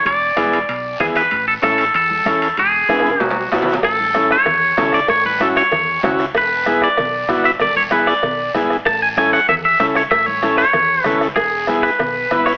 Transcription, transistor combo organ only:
X:1
M:4/4
L:1/8
Q:1/4=191
K:A
V:1 name="Transistor combo organ"
z2 [B,EG] z3 [B,EG] z | z2 [CEA] z3 [CEA] z | z2 [B,EG] z3 [B,EF] z | z2 [CEA] z3 [CEA] z |
z2 [CEF] z3 [CEF] z | z2 [B,EG] z3 [B,EF] z | z2 [B,EG] z3 [B,EG] z | z2 [CEA] z3 [CEA] z |
z2 [CEA] z3 [CEA] z | z2 [B,EG] z3 [B,EB] z |]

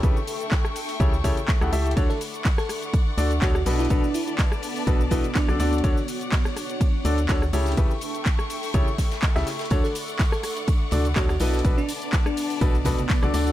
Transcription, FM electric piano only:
X:1
M:4/4
L:1/16
Q:"Swing 16ths" 1/4=124
K:D
V:1 name="FM electric piano"
z16 | z A z3 A3 z4 F F z E | D2 E E z6 E z D2 z2 | z16 |
z16 | z A z3 A3 z4 F F E z | z D z3 D3 z8 |]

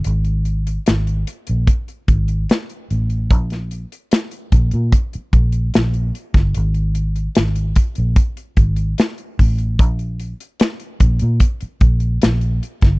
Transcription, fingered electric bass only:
X:1
M:4/4
L:1/16
Q:1/4=74
K:Bbdor
V:1 name="Fingered electric bass" clef=bass
A,,,4 A,,,2 z B,,, z2 A,,,2 z2 =A,,,2 | B,,,3 z3 B,,, B,, z2 B,,,2 B,,,2 z G,,, | A,,,4 A,,,2 z B,,, z2 A,,,2 z2 =A,,,2 | B,,,3 z3 B,,, B,, z2 B,,,2 B,,,2 z G,,, |]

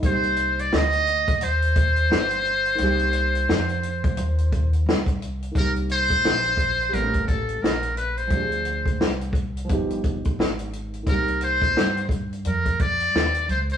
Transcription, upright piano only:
X:1
M:4/4
L:1/8
Q:"Swing 16ths" 1/4=87
K:Cm
V:1 name="Upright piano"
[B,CEG]8 | [E,B,CG]8 | [E,B,CG]4 [G,=A,B,=B,^C]4 | [F,CDGA]4 [F,=B,EG]4 |
[E,B,CG]8 |]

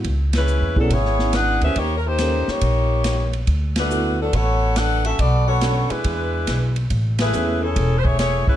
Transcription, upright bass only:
X:1
M:4/4
L:1/8
Q:"Swing" 1/4=140
K:A
V:1 name="Upright bass" clef=bass
C,,2- (3C,, E,, B,,, G,,,3 D,, | ^D,,3 z ^A,,,4 | D,,4 A,,,4 | B,,,3 z E,,2 B,,,2 |
A,,,2 E,,2 E,,,3 z |]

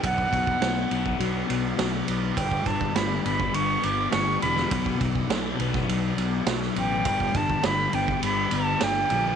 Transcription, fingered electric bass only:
X:1
M:4/4
L:1/8
Q:1/4=102
K:G
V:1 name="Fingered electric bass" clef=bass
B,,, B,,, B,,, B,,, B,,, B,,, B,,, B,,, | G,,, G,,, G,,, G,,, G,,, G,,, G,,, E,,, | B,,, B,,, B,,, B,,, B,,, B,,, B,,, A,,, | G,,, G,,, G,,, G,,, G,,, G,,, G,,, _B,,, |]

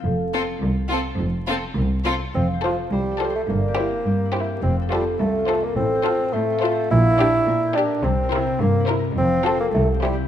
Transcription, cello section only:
X:1
M:2/4
L:1/8
Q:1/4=105
K:F
V:1 name="Cello section" clef=bass
F,,2 C,,2 | F,,2 C,,2 | F,,2 C,,2 | G,,2 G,,2 |
F,,2 C,,2 | A,,2 A,,2 | B,,2 B,,2 | C,2 G,,2 |
F,,2 C,,2 |]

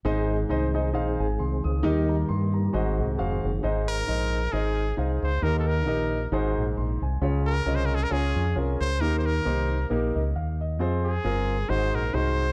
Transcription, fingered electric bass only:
X:1
M:4/4
L:1/8
Q:"Swing" 1/4=134
K:Ab
V:1 name="Fingered electric bass" clef=bass
A,,,2 C,,2 B,,, A,,, C,, D,, | E,,2 G,,2 A,,, C,, F,,, _G,,, | A,,,2 B,,,2 A,,,2 C,, D,, | E,,2 B,,,2 A,,, B,,, B,,, C,, |
D,,2 C,,2 D,, F,, C,, D,, | E,,2 C,,2 B,,, D,, E,,2 | F,,2 G,,,2 A,,, B,,, C,,2 |]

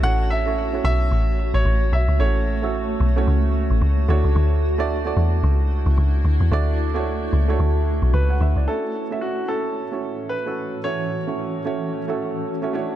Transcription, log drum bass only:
X:1
M:4/4
L:1/16
Q:"Swing 16ths" 1/4=111
K:A
V:1 name="Log drum bass" clef=bass
A,,,6 B,,,2 A,,,3 A,,, A,,,2 B,,, C,, | A,,,6 B,,,2 C,,3 A,,, C,,2 D,, C,, | D,,6 E,,2 C,,3 C,, C,,2 D,, E,, | D,,6 C,,2 D,,3 B,,, C,,2 D,, C,, |
z16 | z16 |]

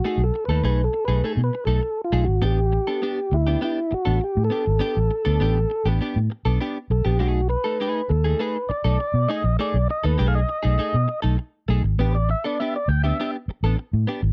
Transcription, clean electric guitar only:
X:1
M:4/4
L:1/16
Q:1/4=100
K:Alyd
V:1 name="Clean electric guitar"
[A,DG] z2 [A,DA] [A,DG] z2 [A,DG] [A,DG] z2 [A,DA] z2 [A,DG] z | [B,=D=G] z2 [B,DA] [B,DG] z2 [B,DG] [B,DG] z2 [B,DA] z2 [B,DG] z | [B,=D=G] z2 [B,DA] [B,DG] z2 [B,DG] [B,DG] z2 [B,DA] [B,DG] z2 [B,DG] | [A,DG] z2 [A,DA] [A,DG] z2 [A,DG] [A,DG] z2 [A,DA] z2 [A,DG] z |
[A,DG] z2 [A,DA] [A,DG] z2 [A,DG] [A,DG] z2 [A,DA] z2 [A,DG] z | [B,=D=G] z2 [B,DA] [B,DG] z2 [B,DG] [B,DG] z2 [B,DA] z2 [B,DG] z |]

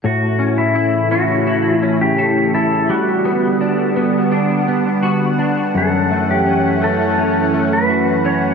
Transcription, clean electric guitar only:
X:1
M:4/4
L:1/8
Q:1/4=84
K:Amix
V:1 name="Clean electric guitar"
A,, C E C E C A E | G, B, D B, D B, F D | F,, A, C A, C A, F C |]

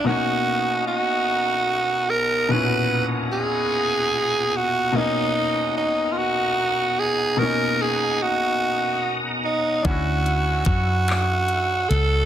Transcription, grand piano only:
X:1
M:6/8
L:1/8
Q:3/8=49
K:B
V:1 name="Grand piano"
[B,,A,CD]6 | [A,,B,,CEF]6 | [B,,A,CD]6 | [B,,A,CD]6 |
[C=DEF]6 |]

